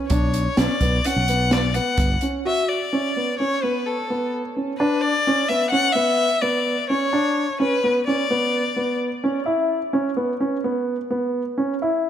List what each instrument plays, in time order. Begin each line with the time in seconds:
0.08 fretless electric bass B1, grand piano D4, violin C#5, kick, closed hi-hat
0.34 closed hi-hat
0.57 fretless electric bass B1, grand piano C#4, violin D5, snare, closed hi-hat
0.80 fretless electric bass B1, grand piano B3, kick, closed hi-hat
1.04 grand piano C#4, violin F#5, closed hi-hat
1.16 fretless electric bass B1
1.28 grand piano B3, closed hi-hat
1.51 violin D5, snare, closed hi-hat
1.74 grand piano B3, violin F#5, closed hi-hat
1.97 fretless electric bass G1, kick, closed hi-hat
2.21 grand piano C#4, closed hi-hat
2.45 grand piano F#4, violin E5
2.69 violin D5
2.93 grand piano C#4
3.17 grand piano B3
3.39 grand piano C#4, violin C#5
3.63 grand piano B3, violin B4
3.86 violin A4
4.10 grand piano B3
4.57 grand piano C#4
4.78 grand piano D4, violin B4
5.01 violin D5
5.27 grand piano C#4
5.48 grand piano B3, violin E5
5.71 grand piano C#4, violin F#5
5.93 grand piano B3, violin E5
6.41 grand piano B3, violin D5
6.90 grand piano C#4, violin C#5
7.13 grand piano D4
7.60 grand piano C#4, violin B4
7.84 grand piano B3
8.07 grand piano C#4, violin D5
8.30 grand piano B3
8.76 grand piano B3
9.24 grand piano C#4
9.46 grand piano E4
9.93 grand piano C#4
10.17 grand piano B3
10.40 grand piano C#4
10.64 grand piano B3
11.11 grand piano B3
11.58 grand piano C#4
11.82 grand piano E4